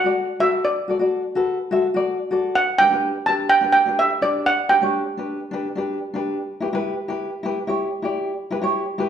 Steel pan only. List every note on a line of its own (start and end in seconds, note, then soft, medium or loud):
0.00 0.42 F#5 medium
0.40 0.65 E5 medium
0.65 1.32 D5 medium
2.55 2.77 F#5 medium
2.78 3.28 G5 medium
3.26 3.51 A5 medium
3.49 3.71 G5 medium
3.73 3.98 G5 medium
3.99 4.23 E5 medium
4.22 4.47 D5 medium
4.46 4.71 F#5 medium
4.69 5.61 G5 medium